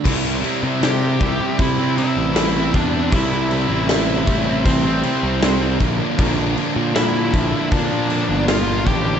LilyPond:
<<
  \new Staff \with { instrumentName = "Lead electric guitar" } { \time 4/4 \key c \lydian \tempo 4 = 78 r4 <g' g''>4 <e' e''>8 <e' e''>4 <d' d''>8 | <e' e''>2 <c' c''>4. r8 | r4 <e' e''>4 <d' d''>4 <f' f''>8 <g' g''>8 | }
  \new Staff \with { instrumentName = "Distorted electric guitar" } { \time 4/4 \key c \lydian <c g c' e'>8 <c g c' e'>16 <g c' e'>16 <c g c' e'>8 <c g c' e'>16 <g c' e'>8 <g c' e'>16 <c g c' e'>8 <c g c' e'>16 <g c' e'>16 <c g c' e'>16 <g c' e'>16 | <c g c' e'>8 <c g c' e'>16 <g c' e'>16 <c g c' e'>8 <c g c' e'>16 <g c' e'>8 <g c' e'>16 <c g c' e'>8 <c g c' e'>16 <g c' e'>16 <bes, d f bes d'>16 <f bes d'>16 | <bes, d f bes d'>8 <d f bes d'>16 <f bes d'>16 <bes, d f bes d'>8 <d f bes d'>16 <f bes d'>8 <f bes d'>16 <d f bes d'>8 <bes, d f bes d'>16 <f bes d'>16 <d f bes d'>16 <f bes d'>16 | }
  \new Staff \with { instrumentName = "Distorted electric guitar" } { \time 4/4 \key c \lydian <c g c' e'>8 <c g c' e'>16 <g c' e'>16 <c g c' e'>8 <c g c' e'>16 <g c' e'>8 <g c' e'>16 <c g c' e'>8 <c g c' e'>16 <g c' e'>16 <c g c' e'>16 <g c' e'>16 | <c g c' e'>8 <c g c' e'>16 <g c' e'>16 <c g c' e'>8 <c g c' e'>16 <g c' e'>8 <g c' e'>16 <c g c' e'>8 <c g c' e'>16 <g c' e'>16 <bes, d f bes d'>16 <f bes d'>16 | <bes, d f bes d'>8 <d f bes d'>16 <f bes d'>16 <bes, d f bes d'>8 <d f bes d'>16 <f bes d'>8 <f bes d'>16 <d f bes d'>8 <bes, d f bes d'>16 <f bes d'>16 <d f bes d'>16 <f bes d'>16 | }
  \new Staff \with { instrumentName = "Picked electric bass" } { \clef bass \time 4/4 \key c \lydian c,8 r16 c8. c,16 r16 c8. a,,8. e,8 | c,8. a,,8. a,,8 a,,8 r16 c,8. bes,,16 r16 | bes,,8 r16 bes,8. bes,,16 r16 bes,8. g,,8. a,,8 | }
  \new DrumStaff \with { instrumentName = "Drums" } \drummode { \time 4/4 <cymc bd>8 cymc8 <cymc sn>8 <cymc bd>8 <cymc bd>8 cymc8 <cymc sn>8 <cymc bd>8 | <cymc bd>8 cymc8 <cymc sn>8 <cymc bd>8 <cymc bd>8 cymc8 <cymc sn>8 <cymc bd>8 | <cymc bd>8 cymc8 <cymc sn>8 <cymc bd>8 <cymc bd>8 cymc8 <cymc sn>8 <cymc bd>8 | }
>>